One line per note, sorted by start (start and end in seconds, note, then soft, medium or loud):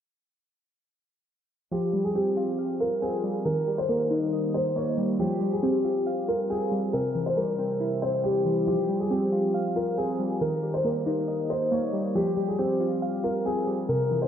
1.72 2.80 F3 medium
1.72 2.03 G4 medium
1.93 3.02 G3 medium
2.04 2.14 G#4 medium
2.15 3.01 C4 medium
2.15 2.76 G4 medium
2.37 2.79 F4 medium
2.59 3.46 F5 loud
2.80 3.45 F4 medium
2.80 3.00 A#4 medium
3.02 3.46 C4 medium
3.02 3.21 G#4 medium
3.24 3.46 G3 medium
3.45 4.54 D#3 medium
3.45 3.76 A#4 medium
3.67 4.76 G3 medium
3.78 3.88 C5 medium
3.89 4.75 A#3 medium
3.89 4.50 A#4 medium
4.11 4.53 D#4 medium
4.32 5.19 D#5 medium
4.54 5.20 D#4 medium
4.54 4.73 C5 medium
4.76 5.19 A#3 medium
4.76 4.95 C#5 medium
4.98 5.19 G3 medium
5.19 6.28 F3 loud
5.19 5.50 G4 loud
5.41 6.50 G3 medium
5.52 5.62 G#4 medium
5.63 6.49 C4 medium
5.63 6.24 G4 medium
5.85 6.27 F4 medium
6.07 6.93 F5 medium
6.28 6.93 F4 medium
6.28 6.47 A#4 medium
6.50 6.93 C4 medium
6.50 6.69 G#4 medium
6.72 6.93 G3 medium
6.93 8.02 C3 medium
6.93 7.24 A#4 medium
7.15 8.24 E3 medium
7.26 7.36 C5 medium
7.37 8.23 G3 medium
7.37 7.98 A#4 medium
7.59 8.01 C4 medium
7.80 8.67 E4 medium
8.02 8.67 C4 medium
8.02 8.21 C5 medium
8.24 8.67 G3 medium
8.24 8.65 G4 medium
8.45 8.67 E3 medium
8.67 9.76 F3 medium
8.67 8.98 G4 medium
8.89 9.98 G3 medium
9.00 9.09 G#4 medium
9.11 9.97 C4 medium
9.11 9.72 G4 medium
9.32 9.75 F4 medium
9.54 10.41 F5 loud
9.76 10.41 F4 medium
9.76 9.95 A#4 medium
9.97 10.41 C4 medium
9.97 10.17 G#4 medium
10.19 10.41 G3 medium
10.41 11.50 D#3 medium
10.41 10.72 A#4 medium
10.63 11.72 G3 medium
10.74 10.83 C5 medium
10.85 11.70 A#3 medium
10.85 11.46 A#4 medium
11.06 11.49 D#4 medium
11.28 12.15 D#5 medium
11.50 12.15 D#4 medium
11.50 11.69 C5 medium
11.72 12.15 A#3 medium
11.72 11.91 C#5 medium
11.93 12.15 G3 medium
12.15 13.24 F3 loud
12.15 12.46 G4 loud
12.37 13.46 G3 medium
12.48 12.57 G#4 medium
12.59 13.44 C4 medium
12.59 13.20 G4 medium
12.80 13.22 F4 medium
13.02 13.89 F5 loud
13.24 13.89 F4 medium
13.24 13.43 A#4 medium
13.46 13.89 C4 medium
13.46 13.65 G#4 medium
13.67 13.89 G3 medium
13.89 14.28 C3 loud
13.89 14.20 A#4 medium
14.11 14.28 E3 medium
14.22 14.28 C5 medium